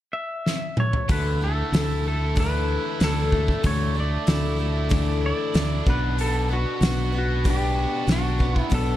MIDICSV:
0, 0, Header, 1, 6, 480
1, 0, Start_track
1, 0, Key_signature, 2, "major"
1, 0, Tempo, 635593
1, 825, Time_signature, 4, 2, 24, 8
1, 6771, End_track
2, 0, Start_track
2, 0, Title_t, "Pedal steel guitar"
2, 0, Program_c, 0, 26
2, 100, Note_on_c, 0, 76, 79
2, 597, Note_off_c, 0, 76, 0
2, 604, Note_on_c, 0, 73, 72
2, 819, Note_off_c, 0, 73, 0
2, 841, Note_on_c, 0, 71, 77
2, 1081, Note_off_c, 0, 71, 0
2, 1086, Note_on_c, 0, 69, 79
2, 1561, Note_off_c, 0, 69, 0
2, 1570, Note_on_c, 0, 69, 68
2, 1783, Note_off_c, 0, 69, 0
2, 1813, Note_on_c, 0, 71, 80
2, 2292, Note_off_c, 0, 71, 0
2, 2295, Note_on_c, 0, 69, 75
2, 2768, Note_on_c, 0, 73, 87
2, 2775, Note_off_c, 0, 69, 0
2, 2982, Note_off_c, 0, 73, 0
2, 3021, Note_on_c, 0, 74, 94
2, 3964, Note_off_c, 0, 74, 0
2, 3973, Note_on_c, 0, 74, 87
2, 4451, Note_off_c, 0, 74, 0
2, 4454, Note_on_c, 0, 71, 74
2, 4664, Note_off_c, 0, 71, 0
2, 4689, Note_on_c, 0, 69, 87
2, 4902, Note_off_c, 0, 69, 0
2, 4932, Note_on_c, 0, 66, 89
2, 5412, Note_off_c, 0, 66, 0
2, 5424, Note_on_c, 0, 66, 75
2, 5651, Note_off_c, 0, 66, 0
2, 5666, Note_on_c, 0, 67, 85
2, 6094, Note_off_c, 0, 67, 0
2, 6133, Note_on_c, 0, 66, 85
2, 6495, Note_off_c, 0, 66, 0
2, 6495, Note_on_c, 0, 64, 85
2, 6604, Note_on_c, 0, 69, 92
2, 6611, Note_off_c, 0, 64, 0
2, 6771, Note_off_c, 0, 69, 0
2, 6771, End_track
3, 0, Start_track
3, 0, Title_t, "Twelve-string acoustic guitar"
3, 0, Program_c, 1, 25
3, 821, Note_on_c, 1, 50, 74
3, 826, Note_on_c, 1, 52, 74
3, 831, Note_on_c, 1, 57, 75
3, 835, Note_on_c, 1, 64, 72
3, 836, Note_on_c, 1, 69, 77
3, 1054, Note_off_c, 1, 69, 0
3, 1063, Note_on_c, 1, 69, 49
3, 1064, Note_off_c, 1, 50, 0
3, 1066, Note_off_c, 1, 52, 0
3, 1066, Note_off_c, 1, 64, 0
3, 1069, Note_off_c, 1, 57, 0
3, 1075, Note_on_c, 1, 64, 47
3, 1090, Note_on_c, 1, 57, 42
3, 1305, Note_off_c, 1, 69, 0
3, 1308, Note_on_c, 1, 52, 58
3, 1309, Note_off_c, 1, 57, 0
3, 1311, Note_off_c, 1, 64, 0
3, 1318, Note_on_c, 1, 57, 54
3, 1321, Note_on_c, 1, 64, 56
3, 1330, Note_on_c, 1, 69, 60
3, 1530, Note_off_c, 1, 69, 0
3, 1539, Note_on_c, 1, 69, 47
3, 1541, Note_off_c, 1, 64, 0
3, 1548, Note_off_c, 1, 52, 0
3, 1550, Note_on_c, 1, 64, 39
3, 1553, Note_off_c, 1, 57, 0
3, 1561, Note_on_c, 1, 57, 34
3, 1777, Note_on_c, 1, 50, 64
3, 1778, Note_off_c, 1, 57, 0
3, 1779, Note_off_c, 1, 64, 0
3, 1783, Note_off_c, 1, 69, 0
3, 1783, Note_on_c, 1, 52, 75
3, 1787, Note_on_c, 1, 57, 77
3, 1788, Note_on_c, 1, 64, 81
3, 1793, Note_on_c, 1, 69, 82
3, 2258, Note_off_c, 1, 52, 0
3, 2263, Note_off_c, 1, 50, 0
3, 2267, Note_on_c, 1, 52, 55
3, 2268, Note_off_c, 1, 57, 0
3, 2268, Note_off_c, 1, 64, 0
3, 2271, Note_off_c, 1, 69, 0
3, 2275, Note_on_c, 1, 57, 61
3, 2282, Note_on_c, 1, 64, 58
3, 2291, Note_on_c, 1, 69, 59
3, 2741, Note_off_c, 1, 52, 0
3, 2745, Note_off_c, 1, 57, 0
3, 2745, Note_on_c, 1, 50, 73
3, 2749, Note_off_c, 1, 64, 0
3, 2750, Note_on_c, 1, 52, 76
3, 2751, Note_off_c, 1, 69, 0
3, 2754, Note_on_c, 1, 57, 77
3, 2758, Note_on_c, 1, 64, 86
3, 2760, Note_on_c, 1, 69, 78
3, 2970, Note_off_c, 1, 69, 0
3, 2979, Note_on_c, 1, 69, 51
3, 2985, Note_off_c, 1, 64, 0
3, 2987, Note_off_c, 1, 50, 0
3, 2989, Note_off_c, 1, 52, 0
3, 2991, Note_off_c, 1, 57, 0
3, 2994, Note_on_c, 1, 64, 49
3, 2999, Note_on_c, 1, 57, 41
3, 3217, Note_off_c, 1, 57, 0
3, 3222, Note_on_c, 1, 52, 57
3, 3223, Note_off_c, 1, 69, 0
3, 3226, Note_on_c, 1, 57, 57
3, 3231, Note_off_c, 1, 64, 0
3, 3240, Note_on_c, 1, 64, 59
3, 3245, Note_on_c, 1, 69, 58
3, 3454, Note_off_c, 1, 69, 0
3, 3463, Note_on_c, 1, 69, 46
3, 3465, Note_off_c, 1, 52, 0
3, 3466, Note_off_c, 1, 64, 0
3, 3467, Note_off_c, 1, 57, 0
3, 3475, Note_on_c, 1, 64, 44
3, 3491, Note_on_c, 1, 57, 38
3, 3694, Note_off_c, 1, 57, 0
3, 3695, Note_on_c, 1, 50, 81
3, 3700, Note_off_c, 1, 64, 0
3, 3700, Note_off_c, 1, 69, 0
3, 3700, Note_on_c, 1, 52, 86
3, 3703, Note_on_c, 1, 57, 90
3, 3709, Note_on_c, 1, 64, 90
3, 3709, Note_on_c, 1, 69, 88
3, 4172, Note_off_c, 1, 52, 0
3, 4181, Note_off_c, 1, 50, 0
3, 4181, Note_on_c, 1, 52, 57
3, 4185, Note_off_c, 1, 57, 0
3, 4188, Note_off_c, 1, 64, 0
3, 4188, Note_off_c, 1, 69, 0
3, 4195, Note_on_c, 1, 57, 62
3, 4205, Note_on_c, 1, 64, 64
3, 4209, Note_on_c, 1, 69, 64
3, 4423, Note_off_c, 1, 64, 0
3, 4423, Note_off_c, 1, 69, 0
3, 4424, Note_off_c, 1, 52, 0
3, 4426, Note_on_c, 1, 66, 58
3, 4426, Note_on_c, 1, 71, 62
3, 4429, Note_off_c, 1, 57, 0
3, 4432, Note_on_c, 1, 62, 58
3, 4435, Note_on_c, 1, 54, 52
3, 4438, Note_on_c, 1, 47, 51
3, 4898, Note_off_c, 1, 71, 0
3, 4901, Note_on_c, 1, 71, 49
3, 4906, Note_off_c, 1, 66, 0
3, 4908, Note_off_c, 1, 62, 0
3, 4910, Note_off_c, 1, 54, 0
3, 4912, Note_off_c, 1, 47, 0
3, 4916, Note_on_c, 1, 66, 46
3, 4928, Note_on_c, 1, 62, 39
3, 5138, Note_off_c, 1, 62, 0
3, 5139, Note_on_c, 1, 54, 50
3, 5143, Note_off_c, 1, 71, 0
3, 5144, Note_off_c, 1, 66, 0
3, 5147, Note_on_c, 1, 62, 60
3, 5153, Note_on_c, 1, 66, 56
3, 5162, Note_on_c, 1, 71, 63
3, 5370, Note_off_c, 1, 71, 0
3, 5379, Note_on_c, 1, 71, 49
3, 5382, Note_off_c, 1, 54, 0
3, 5383, Note_off_c, 1, 66, 0
3, 5386, Note_off_c, 1, 62, 0
3, 5392, Note_on_c, 1, 66, 39
3, 5404, Note_on_c, 1, 62, 41
3, 5621, Note_off_c, 1, 62, 0
3, 5622, Note_off_c, 1, 71, 0
3, 5622, Note_on_c, 1, 47, 73
3, 5628, Note_off_c, 1, 66, 0
3, 5630, Note_on_c, 1, 62, 84
3, 5635, Note_on_c, 1, 71, 83
3, 6089, Note_off_c, 1, 62, 0
3, 6093, Note_on_c, 1, 54, 55
3, 6098, Note_on_c, 1, 62, 55
3, 6102, Note_off_c, 1, 47, 0
3, 6109, Note_on_c, 1, 66, 60
3, 6111, Note_off_c, 1, 71, 0
3, 6114, Note_on_c, 1, 71, 61
3, 6321, Note_off_c, 1, 71, 0
3, 6330, Note_on_c, 1, 71, 47
3, 6335, Note_off_c, 1, 66, 0
3, 6338, Note_off_c, 1, 54, 0
3, 6340, Note_off_c, 1, 62, 0
3, 6344, Note_on_c, 1, 66, 41
3, 6353, Note_on_c, 1, 62, 38
3, 6568, Note_on_c, 1, 47, 75
3, 6572, Note_off_c, 1, 62, 0
3, 6573, Note_off_c, 1, 66, 0
3, 6575, Note_on_c, 1, 54, 79
3, 6576, Note_off_c, 1, 71, 0
3, 6581, Note_on_c, 1, 62, 80
3, 6582, Note_on_c, 1, 66, 89
3, 6586, Note_on_c, 1, 71, 78
3, 6771, Note_off_c, 1, 47, 0
3, 6771, Note_off_c, 1, 54, 0
3, 6771, Note_off_c, 1, 62, 0
3, 6771, Note_off_c, 1, 66, 0
3, 6771, Note_off_c, 1, 71, 0
3, 6771, End_track
4, 0, Start_track
4, 0, Title_t, "Overdriven electric guitar"
4, 0, Program_c, 2, 29
4, 1773, Note_on_c, 2, 62, 66
4, 2019, Note_on_c, 2, 64, 67
4, 2259, Note_off_c, 2, 62, 0
4, 2262, Note_on_c, 2, 62, 66
4, 2505, Note_on_c, 2, 57, 66
4, 2976, Note_off_c, 2, 57, 0
4, 3219, Note_off_c, 2, 64, 0
4, 3706, Note_off_c, 2, 62, 0
4, 3709, Note_on_c, 2, 62, 64
4, 3942, Note_on_c, 2, 64, 70
4, 4188, Note_off_c, 2, 62, 0
4, 4191, Note_on_c, 2, 62, 69
4, 4424, Note_off_c, 2, 64, 0
4, 4664, Note_on_c, 2, 47, 69
4, 4906, Note_on_c, 2, 59, 64
4, 5391, Note_off_c, 2, 59, 0
4, 5394, Note_on_c, 2, 59, 63
4, 5628, Note_off_c, 2, 62, 0
4, 5862, Note_on_c, 2, 66, 72
4, 5863, Note_off_c, 2, 47, 0
4, 6345, Note_off_c, 2, 59, 0
4, 6348, Note_on_c, 2, 59, 67
4, 6771, Note_off_c, 2, 59, 0
4, 6771, Note_off_c, 2, 66, 0
4, 6771, End_track
5, 0, Start_track
5, 0, Title_t, "Fingered electric bass"
5, 0, Program_c, 3, 33
5, 825, Note_on_c, 3, 38, 94
5, 1220, Note_off_c, 3, 38, 0
5, 1301, Note_on_c, 3, 38, 98
5, 2091, Note_off_c, 3, 38, 0
5, 2271, Note_on_c, 3, 38, 93
5, 2664, Note_off_c, 3, 38, 0
5, 2749, Note_on_c, 3, 38, 97
5, 3142, Note_off_c, 3, 38, 0
5, 3230, Note_on_c, 3, 38, 99
5, 4016, Note_off_c, 3, 38, 0
5, 4191, Note_on_c, 3, 38, 94
5, 4386, Note_off_c, 3, 38, 0
5, 4427, Note_on_c, 3, 35, 89
5, 5017, Note_off_c, 3, 35, 0
5, 5141, Note_on_c, 3, 35, 94
5, 5928, Note_off_c, 3, 35, 0
5, 6098, Note_on_c, 3, 35, 94
5, 6493, Note_off_c, 3, 35, 0
5, 6581, Note_on_c, 3, 35, 95
5, 6771, Note_off_c, 3, 35, 0
5, 6771, End_track
6, 0, Start_track
6, 0, Title_t, "Drums"
6, 351, Note_on_c, 9, 38, 57
6, 426, Note_off_c, 9, 38, 0
6, 581, Note_on_c, 9, 47, 79
6, 657, Note_off_c, 9, 47, 0
6, 705, Note_on_c, 9, 43, 85
6, 780, Note_off_c, 9, 43, 0
6, 824, Note_on_c, 9, 46, 50
6, 826, Note_on_c, 9, 36, 97
6, 900, Note_off_c, 9, 46, 0
6, 902, Note_off_c, 9, 36, 0
6, 1311, Note_on_c, 9, 46, 49
6, 1319, Note_on_c, 9, 38, 102
6, 1387, Note_off_c, 9, 46, 0
6, 1394, Note_off_c, 9, 38, 0
6, 1789, Note_on_c, 9, 46, 51
6, 1790, Note_on_c, 9, 36, 99
6, 1864, Note_off_c, 9, 46, 0
6, 1865, Note_off_c, 9, 36, 0
6, 2268, Note_on_c, 9, 46, 48
6, 2275, Note_on_c, 9, 38, 97
6, 2343, Note_off_c, 9, 46, 0
6, 2351, Note_off_c, 9, 38, 0
6, 2510, Note_on_c, 9, 36, 72
6, 2586, Note_off_c, 9, 36, 0
6, 2630, Note_on_c, 9, 36, 79
6, 2706, Note_off_c, 9, 36, 0
6, 2747, Note_on_c, 9, 46, 49
6, 2750, Note_on_c, 9, 36, 92
6, 2823, Note_off_c, 9, 46, 0
6, 2826, Note_off_c, 9, 36, 0
6, 3225, Note_on_c, 9, 46, 49
6, 3232, Note_on_c, 9, 38, 100
6, 3300, Note_off_c, 9, 46, 0
6, 3308, Note_off_c, 9, 38, 0
6, 3706, Note_on_c, 9, 46, 46
6, 3711, Note_on_c, 9, 36, 99
6, 3782, Note_off_c, 9, 46, 0
6, 3787, Note_off_c, 9, 36, 0
6, 4187, Note_on_c, 9, 46, 40
6, 4195, Note_on_c, 9, 38, 99
6, 4263, Note_off_c, 9, 46, 0
6, 4270, Note_off_c, 9, 38, 0
6, 4430, Note_on_c, 9, 36, 95
6, 4506, Note_off_c, 9, 36, 0
6, 4671, Note_on_c, 9, 46, 47
6, 4747, Note_off_c, 9, 46, 0
6, 5152, Note_on_c, 9, 46, 49
6, 5160, Note_on_c, 9, 38, 108
6, 5228, Note_off_c, 9, 46, 0
6, 5235, Note_off_c, 9, 38, 0
6, 5628, Note_on_c, 9, 36, 105
6, 5629, Note_on_c, 9, 46, 48
6, 5703, Note_off_c, 9, 36, 0
6, 5704, Note_off_c, 9, 46, 0
6, 6105, Note_on_c, 9, 46, 45
6, 6112, Note_on_c, 9, 38, 96
6, 6180, Note_off_c, 9, 46, 0
6, 6188, Note_off_c, 9, 38, 0
6, 6345, Note_on_c, 9, 36, 74
6, 6421, Note_off_c, 9, 36, 0
6, 6465, Note_on_c, 9, 36, 75
6, 6540, Note_off_c, 9, 36, 0
6, 6584, Note_on_c, 9, 36, 90
6, 6584, Note_on_c, 9, 46, 52
6, 6659, Note_off_c, 9, 46, 0
6, 6660, Note_off_c, 9, 36, 0
6, 6771, End_track
0, 0, End_of_file